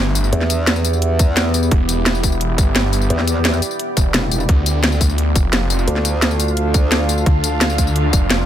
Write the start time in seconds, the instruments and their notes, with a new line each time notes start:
Already playing: detuned saw bass G1, ambient pad B3 E4 G4 E5
0.15 open hi-hat, tambourine
0.24 tambourine
0.33 wobble bass E2, closed hi-hat
0.41 snare
0.50 closed hi-hat, tambourine
0.67 snare, closed hi-hat
0.76 tambourine
0.85 open hi-hat, tambourine
0.93 tambourine
1.02 closed hi-hat
1.19 kick, closed hi-hat, tambourine
1.37 snare, closed hi-hat
1.54 open hi-hat, tambourine
1.63 tambourine
1.71 detuned saw bass E1, ambient pad D5, kick, closed hi-hat
1.89 closed hi-hat, tambourine
2.06 snare, closed hi-hat
2.15 tambourine
2.23 kick, open hi-hat, tambourine
2.32 tambourine
2.41 closed hi-hat
2.58 detuned saw bass G1, kick, closed hi-hat, tambourine
2.76 snare, closed hi-hat
2.93 open hi-hat, tambourine
3.01 tambourine
3.10 wobble bass E2, closed hi-hat
3.19 snare
3.27 closed hi-hat, tambourine
3.45 snare, closed hi-hat
3.53 tambourine
3.62 open hi-hat, tambourine
3.71 tambourine
3.79 closed hi-hat
3.97 detuned saw bass E1, kick, closed hi-hat, tambourine
4.14 wobble bass E1, snare, closed hi-hat
4.31 wobble bass E1, open hi-hat, tambourine
4.40 tambourine
4.49 detuned saw bass D2, ambient pad D4 F4 A4 F5, kick, closed hi-hat
4.66 closed hi-hat, tambourine
4.83 snare, closed hi-hat
4.92 tambourine
5.01 kick, open hi-hat, tambourine
5.09 tambourine
5.18 closed hi-hat
5.35 detuned saw bass F1, kick, closed hi-hat, tambourine
5.53 snare, closed hi-hat
5.70 open hi-hat, tambourine
5.79 tambourine
5.88 wobble bass D2, closed hi-hat
5.96 snare
6.05 closed hi-hat, tambourine
6.22 snare, closed hi-hat
6.31 tambourine
6.40 open hi-hat, tambourine
6.48 tambourine
6.57 closed hi-hat
6.74 kick, closed hi-hat, tambourine
6.92 snare, closed hi-hat
7.09 open hi-hat, tambourine
7.18 tambourine
7.26 detuned saw bass D2, kick, closed hi-hat
7.44 closed hi-hat, tambourine
7.61 snare, closed hi-hat
7.70 tambourine
7.78 kick, open hi-hat, tambourine
7.87 tambourine
7.96 closed hi-hat
8.13 detuned saw bass F1, kick, closed hi-hat, tambourine
8.30 snare, closed hi-hat